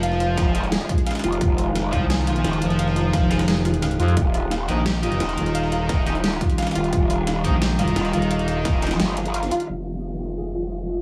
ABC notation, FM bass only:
X:1
M:4/4
L:1/8
Q:1/4=174
K:Fm
V:1 name="FM bass" clef=bass
F,,,2 z6 | z3 C,,3 z F,,,- | F,,,2 F,,,4- F,,, F,, | z3 B,,,3 z E,,,- |
E,,,2 z6 | z3 B,,,3 z E,,,- | E,,,2 z6 | z8 |]